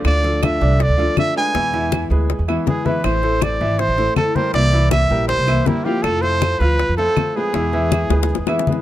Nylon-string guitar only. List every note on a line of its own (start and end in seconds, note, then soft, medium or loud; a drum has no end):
0.05 0.41 D3 medium
0.05 0.41 A3 medium
0.05 0.42 D4 medium
0.05 0.42 F4 medium
0.42 0.79 D3 medium
0.42 0.78 A3 soft
0.42 0.79 D4 medium
0.42 0.79 F4 medium
0.80 muted nylon-string guitar stroke medium
0.97 1.16 A3 medium
0.97 1.16 D4 medium
0.97 1.16 F4 medium
1.17 1.35 D3 soft
1.17 1.35 A3 soft
1.17 1.35 D4 soft
1.17 1.35 F4 medium
1.36 1.54 A3 medium
1.36 1.54 D4 medium
1.36 1.54 F4 medium
1.54 1.91 B2 medium
1.54 1.90 E3 medium
1.54 1.91 G#3 medium
1.54 1.91 B3 medium
1.54 1.91 E4 medium
1.91 2.28 E3 soft
1.91 2.29 G#3 soft
1.91 2.29 B3 soft
1.91 2.29 E4 soft
2.29 muted nylon-string guitar stroke medium
2.48 2.66 E3 medium
2.48 2.66 G#3 medium
2.48 2.67 B3 medium
2.48 2.66 E4 medium
2.67 2.85 E3 soft
2.67 2.85 G#3 soft
2.67 2.85 B3 medium
2.67 2.84 E4 medium
2.85 3.03 E3 medium
2.85 3.04 G#3 medium
2.85 3.04 B3 medium
2.85 3.03 E4 medium
3.04 3.40 E3 medium
3.04 3.41 A3 medium
3.04 3.41 C4 medium
3.04 3.42 E4 medium
3.41 3.78 E3 soft
3.41 3.78 A3 soft
3.41 3.79 C4 medium
3.41 3.79 E4 medium
3.79 muted nylon-string guitar stroke medium
3.98 4.16 A3 soft
3.98 4.16 C4 medium
3.98 4.16 E4 medium
4.16 4.35 E3 soft
4.16 4.35 A3 soft
4.16 4.35 C4 soft
4.16 4.34 E4 medium
4.35 4.54 A3 medium
4.35 4.54 C4 medium
4.35 4.53 E4 medium
4.55 4.91 C3 medium
4.55 4.90 E3 medium
4.55 4.91 A#3 medium
4.55 4.91 C4 medium
4.55 4.92 E4 medium
4.91 5.27 E3 soft
4.91 5.27 A#3 soft
4.91 5.28 C4 soft
4.91 5.28 E4 medium
5.28 muted nylon-string guitar stroke medium
5.46 5.64 E3 medium
5.46 5.65 A#3 medium
5.46 5.65 C4 medium
5.46 5.65 E4 medium
5.66 5.84 E3 soft
5.66 5.84 A#3 medium
5.66 5.85 C4 medium
5.66 5.84 E4 medium
5.85 6.04 E3 medium
5.85 6.04 A#3 medium
5.85 6.04 C4 medium
5.85 6.04 E4 medium
6.04 6.41 C3 medium
6.04 6.41 F3 medium
6.04 6.41 A3 medium
6.04 6.42 C4 medium
6.04 6.42 F4 medium
6.42 6.79 F3 soft
6.42 6.79 A3 soft
6.42 6.79 C4 soft
6.42 6.79 F4 medium
6.80 muted nylon-string guitar stroke medium
6.98 7.16 F3 medium
6.98 7.16 A3 medium
6.98 7.17 C4 medium
6.98 7.16 F4 medium
7.17 7.35 F3 soft
7.17 7.35 A3 soft
7.17 7.35 C4 medium
7.17 7.35 F4 medium
7.37 7.54 F3 medium
7.37 7.54 A3 medium
7.37 7.55 C4 medium
7.37 7.54 F4 medium
7.54 7.91 B2 medium
7.54 7.91 E3 medium
7.54 7.91 G#3 medium
7.54 7.91 B3 medium
7.54 7.92 E4 medium
7.92 8.28 E3 soft
7.92 8.29 G#3 soft
7.92 8.29 B3 medium
7.92 8.29 E4 medium
8.29 muted nylon-string guitar stroke medium
8.48 8.66 E3 soft
8.48 8.66 G#3 medium
8.48 8.67 B3 medium
8.48 8.66 E4 medium
8.67 8.82 E3 soft
8.67 8.82 G#3 soft
8.67 8.82 B3 medium
8.67 8.82 E4 medium